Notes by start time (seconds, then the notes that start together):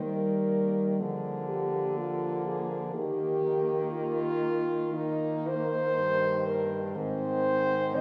Already playing: D#3
0.02 G3 A#3 A#4
1.00 D3 F3 A#3 G#4
1.50 G4
1.97 F3 A#3 F4
2.47 G#4
2.95 D#3 A#3 G4
3.91 F4
4.93 D#3 A#3 D#4
5.48 C5
5.97 G2
6.47 A#4
6.94 G#2 D#3 C4 C5
7.95 D#3 C4 D#5